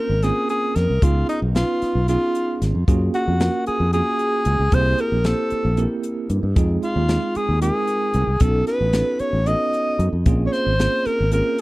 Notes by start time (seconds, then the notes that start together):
Already playing: A#3 C4 C#4 F4 A#4
0.09 G#1
0.23 A#3 C4 C#4 F4 G#4 A#4, snare, closed hi-hat
0.49 G#4, closed hi-hat
0.76 F2 A#4, snare, closed hi-hat
0.90 C2
1.02 C#2 B3 C#4 D#4 F4 G#4, kick, closed hi-hat
1.29 D#4, closed hi-hat
1.42 B1
1.55 B3 C#4 D#4 F4 B4, snare, closed hi-hat
1.82 muted fingered electric bass stroke, snare, closed hi-hat
1.95 B1
2.08 B3 C#4 D#4 F4 G#4, closed hi-hat
2.35 closed hi-hat
2.62 G#1, snare, closed hi-hat
2.75 F2
2.88 F#2 A#3 C#4 F4 F#4 G#4, kick, closed hi-hat
3.14 F#4, closed hi-hat
3.28 F2
3.40 A#3 C#4 F4 F#4 A#4, snare, closed hi-hat
3.67 G#4, muted fingered electric bass stroke, closed hi-hat
3.80 F2
3.93 A#3 C#4 F4 F#4 G#4, closed hi-hat
4.19 closed hi-hat
4.45 C#2, closed hi-hat
4.59 C#2
4.72 C2 A#3 C4 E4 G4 G#4 C5, kick, closed hi-hat
4.98 A#4, closed hi-hat
5.12 A#1
5.24 A#3 C4 E4 G4 A4 C5, snare, closed hi-hat
5.50 muted fingered electric bass stroke, closed hi-hat
5.65 A#1
5.77 A#3 C4 E4 G4 A#4, closed hi-hat
6.03 closed hi-hat
6.30 G2, closed hi-hat
6.43 G2
6.56 F2 G#3 C4 D#4 F4 G#4, kick, closed hi-hat
6.83 F4, closed hi-hat
6.96 D#2
7.09 G#3 C4 D#4 F4 G#4, snare, closed hi-hat
7.35 G#4, muted fingered electric bass stroke, closed hi-hat
7.49 D#2
7.61 G#3 C4 D#4 F4 G#4 A#4, closed hi-hat
7.87 closed hi-hat
8.14 C2, closed hi-hat
8.27 C2
8.40 B1 B3 C#4 D#4 F#4 A4, kick, closed hi-hat
8.67 B4, snare, closed hi-hat
8.81 A1
8.93 B3 C#4 D#4 F#4 A4, snare, closed hi-hat
9.19 C#5, muted fingered electric bass stroke, closed hi-hat
9.33 A1
9.46 B3 C#4 D#4 F#4 A4 D#5, closed hi-hat
9.73 closed hi-hat
9.99 F#2, closed hi-hat
10.13 F2
10.26 A#1 A#3 C4 C#4 F4 G#4, kick, closed hi-hat
10.47 C#5
10.53 C5, snare, closed hi-hat
10.66 G#1
10.79 A#3 C4 C#4 F4 G#4, snare, closed hi-hat
11.05 A#4, muted fingered electric bass stroke, closed hi-hat
11.20 G#1
11.32 A#3 C4 C#4 F4 G#4 A#4, closed hi-hat